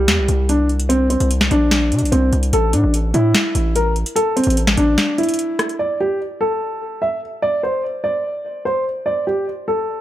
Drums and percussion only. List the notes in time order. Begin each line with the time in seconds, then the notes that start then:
0.08 snare, closed hi-hat
0.28 closed hi-hat
0.49 closed hi-hat
0.69 closed hi-hat
0.80 closed hi-hat
0.90 closed hi-hat
1.10 closed hi-hat
1.20 closed hi-hat
1.31 closed hi-hat
1.41 snare
1.51 closed hi-hat
1.71 snare, closed hi-hat
1.92 closed hi-hat
1.99 closed hi-hat
2.05 closed hi-hat
2.12 closed hi-hat
2.33 closed hi-hat
2.43 closed hi-hat
2.53 closed hi-hat
2.73 closed hi-hat
2.94 closed hi-hat
3.14 closed hi-hat
3.35 snare, closed hi-hat
3.55 closed hi-hat
3.76 closed hi-hat
3.96 closed hi-hat
4.06 closed hi-hat
4.16 closed hi-hat
4.37 closed hi-hat
4.44 closed hi-hat
4.50 closed hi-hat
4.57 closed hi-hat
4.67 snare
4.77 closed hi-hat
4.98 snare, closed hi-hat
5.18 closed hi-hat
5.23 closed hi-hat
5.29 closed hi-hat
5.34 closed hi-hat
5.39 closed hi-hat
5.59 cross-stick, closed hi-hat
5.69 closed hi-hat